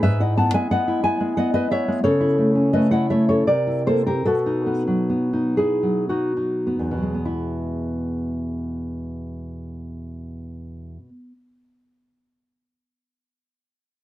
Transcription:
0.03 G#2 B4 E5
0.20 E4 D#5 F#5
0.37 B3 F#5 A5
0.54 G#3 E5 G#5
0.71 B3 D#5 F#5
0.88 E4
1.04 B3 E5 G#5
1.20 G#3
1.37 B3 D#5 F#5
1.54 E4 B4 D#5
1.71 B3 C#5 E5
1.88 G#3
2.04 C#3 A4 C#5
2.20 E4
2.38 A3
2.55 C#4
2.73 A3 B4 D#5
2.91 E4 D#5 F#5
3.10 A3 C#5 E5
3.29 C#4 A4 C#5
3.47 C3 A#4 D5
3.67 E4
3.87 A#3 A4 C5
4.06 C4 G4 A#4
4.25 B2 F#4 A4
4.46 D#4
4.66 B3
4.87 F#3
5.10 B3
5.33 D#4
5.57 B3 E4 G#4
5.83 F#3
6.09 B3 D#4 F#4
6.37 D#4
6.67 B3
6.79 E2
6.91 B2
6.97 F#3
7.02 G#3
7.14 B3
7.25 E4

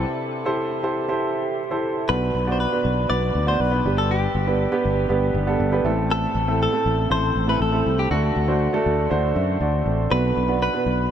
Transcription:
Already playing: C3 E4 G4 A4 C5
0.45 E4 G4 A4 C5
0.83 E4 G4 A4 C5
1.09 E4 G4 A4 C5
1.71 E4 G4 A4 C5
2.09 B1 B2 B3 D4 F#4 B4
2.35 B1
2.47 B3 D4 F#4 D5
2.52 C5
2.60 B4
2.72 B3 D4 F#4 B4
2.85 B1
3.09 B1 B3 D4 F#4 B4 D5
3.35 D2
3.47 B3 D4 F#4 C5 D5
3.60 B1 B4
3.71 B3 D4 F#4 B4
3.85 G1 G2 B3 D4 G4 B4
3.98 A4
4.11 G4
4.35 G1
4.47 B3 D4 G4 B4
4.72 B3 D4 G4 B4
4.85 G1
5.09 G1 B3 D4 G4 B4
5.34 G1
5.47 B3 D4 G4 A4
5.60 G1
5.72 B3 D4 G4 B4
5.84 A1 A2 A3 C4 E4 A4
6.11 A4
6.35 A1
6.48 A3 C4 E4 A4
6.63 A4
6.73 A3 C4 E4 A4
6.86 A1
7.10 A1 A3 C4 E4 A4 C5
7.35 A1
7.47 A3 C4 E4 A4 B4
7.61 A1 A4
7.72 A3 C4 E4 A4
7.86 C2
7.99 G4
8.10 D2 D3 A3 D4 F#4 A4
8.36 D2
8.48 A3 D4 F#4 C5
8.73 A3 D4 F#4 A4
8.86 D2
9.10 D2 A3 D4 F#4 C5
9.36 F#2 E5
9.60 D2 F#4 D5
9.86 A1 C4 A4
10.10 B1 B2 B3 D4 F#4 B4
10.37 B1
10.48 B3 D4 F#4 B4
10.62 B4
10.73 B3 D4 F#4 B4
10.86 B1

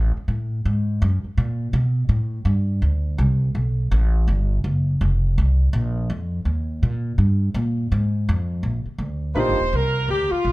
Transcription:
Already playing: A1
0.17 muted upright bass stroke
0.28 A2
0.65 G#2
1.02 F#2
1.24 muted upright bass stroke
1.38 A#2
1.73 B2
2.09 A2
2.45 G2
2.82 D2
3.18 C2
3.55 B1
3.91 A1
4.28 G1
4.64 F#1
5.01 F1
5.38 C2
5.73 A#1
6.10 F2
6.45 D#2
6.83 A#2
7.18 G2
7.54 A#2
7.92 G#2
8.29 F2
8.63 A#1
8.86 muted upright bass stroke
8.98 D2
9.35 A#1 A#3 D4 D#4 F4 G4 B4 C5
9.49 G1
9.61 D#1
9.73 C2 A#4
10.08 D2 G4
10.31 F4, muted upright bass stroke
10.45 A#1

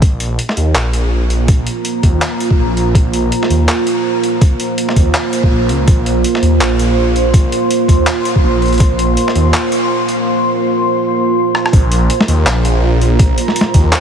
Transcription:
0.02 A#1 A#3 F4 C5 A#5, kick, closed hi-hat
0.20 closed hi-hat
0.39 closed hi-hat
0.49 snare
0.57 D#2, closed hi-hat
0.75 A#1, clap, closed hi-hat
0.93 closed hi-hat
1.30 closed hi-hat
1.48 kick, closed hi-hat
1.67 closed hi-hat
1.85 closed hi-hat
2.03 D#2, kick, closed hi-hat
2.22 clap, closed hi-hat
2.40 closed hi-hat
2.51 kick
2.58 A#1
2.77 closed hi-hat
2.95 kick, closed hi-hat
3.13 closed hi-hat
3.32 closed hi-hat
3.43 snare
3.50 D#2, closed hi-hat
3.69 clap, closed hi-hat
3.87 closed hi-hat
4.24 closed hi-hat
4.41 kick, closed hi-hat
4.60 closed hi-hat
4.78 closed hi-hat
4.89 snare
4.96 D#2, kick, closed hi-hat
5.14 clap, closed hi-hat
5.33 closed hi-hat
5.43 kick
5.51 A#1
5.69 C#2, closed hi-hat
5.88 A#1 C6, kick, closed hi-hat
6.06 closed hi-hat
6.24 closed hi-hat
6.35 snare
6.42 D#2, closed hi-hat
6.61 A#1, clap, closed hi-hat
6.79 closed hi-hat
7.16 closed hi-hat
7.34 kick, closed hi-hat
7.52 closed hi-hat
7.71 closed hi-hat
7.88 D#2, kick, closed hi-hat
8.07 clap, closed hi-hat
8.25 closed hi-hat
8.36 kick
8.44 A#1
8.62 closed hi-hat
8.66 closed hi-hat
8.68 closed hi-hat
8.73 closed hi-hat
8.74 closed hi-hat
8.78 kick, closed hi-hat
8.80 closed hi-hat
8.99 closed hi-hat
9.17 closed hi-hat
9.28 snare
9.35 D#2, closed hi-hat
9.54 clap, closed hi-hat
9.72 closed hi-hat
10.09 closed hi-hat
11.55 cross-stick
11.66 cross-stick
11.73 A#1 A#3 F4 C5 A#5, kick, closed hi-hat
11.92 closed hi-hat
12.10 closed hi-hat
12.21 snare
12.28 D#2, closed hi-hat
12.46 A#1, clap, closed hi-hat
12.65 closed hi-hat
13.01 closed hi-hat
13.19 kick, closed hi-hat
13.38 closed hi-hat
13.48 snare
13.56 closed hi-hat
13.61 snare
13.74 D#2, kick, closed hi-hat
13.93 clap, closed hi-hat

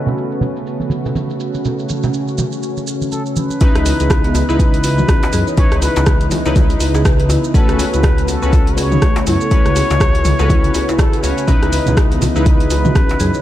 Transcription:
Already playing: C#3 A3 B3 C#4 F#4 A4 B4
0.06 muted conga, low conga, shaker
0.18 shaker
0.32 shaker
0.41 muted conga, high conga, low conga, shaker
0.56 shaker
0.67 shaker
0.80 muted conga, high conga, shaker
0.90 high conga, shaker
1.06 low conga, shaker
1.15 muted conga, high conga, shaker
1.30 shaker
1.40 shaker
1.54 muted conga, shaker
1.65 C#4, low conga, shaker
1.79 shaker
1.89 high conga, shaker
2.03 muted conga, low conga, shaker
2.14 shaker
2.28 shaker
2.38 high conga, low conga, shaker
2.52 shaker
2.63 shaker
2.77 muted conga, shaker
2.87 shaker
3.02 high conga, shaker
3.12 A4, muted conga, shaker
3.26 shaker
3.36 B4, high conga, shaker
3.50 muted conga, shaker
3.61 C#3 E3 B3 C#4 D#4 E4 B4 D#5, kick, closed hi-hat, djembe tone, shaker
3.75 C#2, cross-stick, closed hi-hat, shaker
3.86 B4, open hi-hat, djembe tone, shaker
4.00 C#2 G#4, closed hi-hat, shaker
4.10 kick, cross-stick, closed hi-hat, djembe tone, shaker
4.24 B3, closed hi-hat, shaker
4.35 open hi-hat, djembe tone, shaker
4.49 C#2 D#4 E4 B4, shaker
4.59 B4, kick, closed hi-hat, djembe tone, shaker
4.74 closed hi-hat, shaker
4.84 B4, open hi-hat, djembe tone, shaker
4.98 F#4, mid tom, shaker
5.08 C#4, kick, cross-stick, closed hi-hat, djembe tone, shaker
5.23 closed hi-hat, djembe slap, shaker
5.33 F#2 G#4, open hi-hat, djembe tone, shaker
5.47 C#5, shaker
5.57 C#4 D#4 E4 B4 C#5, kick, closed hi-hat, djembe tone, shaker
5.72 C#2, cross-stick, closed hi-hat, shaker
5.82 B4, open hi-hat, djembe tone, shaker
5.96 C#2, closed hi-hat, djembe slap, shaker
6.06 kick, cross-stick, closed hi-hat, djembe tone, shaker
6.21 closed hi-hat, shaker
6.31 open hi-hat, mid tom, djembe tone, shaker
6.45 C#2 D#4 E4 B4 C#5, djembe slap, shaker
6.56 G#4, kick, closed hi-hat, mid tom, djembe tone, shaker
6.70 closed hi-hat, shaker
6.80 C#2 B4, open hi-hat, djembe tone, shaker
6.94 G#4, djembe slap, shaker
7.05 B4, kick, cross-stick, closed hi-hat, djembe tone, shaker
7.19 B4, closed hi-hat, shaker
7.29 E4, open hi-hat, djembe tone, shaker
7.44 shaker
7.54 A3 C#4 F#4 A4 B4, kick, closed hi-hat, djembe tone, shaker
7.69 C#2, cross-stick, closed hi-hat, shaker
7.79 G#4, open hi-hat, djembe tone, shaker
7.93 C#2 E4 B4, closed hi-hat, shaker
8.03 kick, cross-stick, closed hi-hat, djembe tone, shaker
8.18 G#3, closed hi-hat, shaker
8.28 A4, open hi-hat, djembe tone, shaker
8.42 C#2 C#4 F#4 B4, shaker
8.53 kick, closed hi-hat, djembe tone, shaker
8.67 closed hi-hat, shaker
8.77 G#4 C#5, open hi-hat, djembe tone, shaker
8.92 D#4, mid tom, shaker
9.02 A3, kick, cross-stick, closed hi-hat, djembe tone, shaker
9.16 closed hi-hat, djembe slap, shaker
9.27 F#2 E4 C#5, open hi-hat, djembe tone, shaker
9.41 A4, shaker
9.51 A3 C#4 E4 F#4 B4, kick, closed hi-hat, djembe tone, shaker
9.66 C#2, cross-stick, closed hi-hat, shaker
9.76 G#4, open hi-hat, djembe tone, shaker
9.90 C#2, closed hi-hat, djembe slap, shaker
10.00 kick, cross-stick, closed hi-hat, djembe tone, shaker
10.15 closed hi-hat, shaker
10.25 open hi-hat, mid tom, djembe tone, shaker
10.39 C#2 C#4 F#4 A4 B4, djembe slap, shaker
10.49 E4, kick, closed hi-hat, mid tom, djembe tone, shaker
10.64 closed hi-hat, shaker
10.74 G#4, open hi-hat, djembe tone, shaker
10.88 E4, closed hi-hat, djembe slap, shaker
10.98 G#4 A4, kick, cross-stick, closed hi-hat, djembe tone, shaker
11.13 G#4, closed hi-hat, shaker
11.23 C#2 C#4 F#4 B4 C#5, open hi-hat, djembe tone, shaker
11.38 closed hi-hat, shaker
11.48 E3 C#4 D#4 E4 B4 D#5, kick, closed hi-hat, high conga, djembe tone, low conga, shaker
11.63 C#2, cross-stick, closed hi-hat, shaker
11.72 B4, open hi-hat, djembe tone, shaker
11.86 C#2 G#4, closed hi-hat, muted conga, high conga, low conga, shaker
11.97 kick, cross-stick, closed hi-hat, djembe tone, shaker
12.11 B3, closed hi-hat, shaker
12.22 open hi-hat, muted conga, djembe tone, high conga, low conga, shaker
12.36 C#2 D#4 E4 B4, shaker
12.46 B4, kick, closed hi-hat, djembe tone, shaker
12.60 closed hi-hat, muted conga, shaker
12.70 B4, open hi-hat, djembe tone, shaker
12.85 F#4, mid tom, high conga, low conga, shaker
12.95 C#4, kick, cross-stick, closed hi-hat, muted conga, high conga, djembe tone, shaker
13.09 closed hi-hat, djembe slap, shaker
13.20 F#2 G#4, open hi-hat, djembe tone, shaker
13.34 C#5, muted conga, shaker

